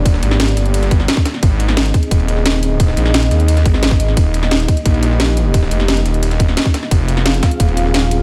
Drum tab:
RD |x-x-x-x-x-x-x-x-|x-xxx-x-xxx-x-x-|x-x-x-x-x-x-x-x-|x-xxx-x-xxx-x-x-|
HH |x-x-xxxxxxx-x-x-|x-x-xxxxx-x-x-x-|x-x-xxxxxxx-x-x-|x-x-xxxxx-x-x-x-|
SD |-o-oo-o--o-ooooo|---oo------oo---|-o-oo-o--o-ooo-o|---oo------oo---|
BD |o---------o--o--|o-----o-o-------|o---------o--o--|o-----o-o-------|

RD |x-x-x-x-x-x-x-x-|x-xxx-x-xxx-x-x-|
HH |x-x-xxxxxxx-x-x-|x-x-xxxxx-x-x-x-|
SD |-o-oo-o--o-ooooo|---oo-o----oo---|
BD |o---------o--o--|o-----o-o-------|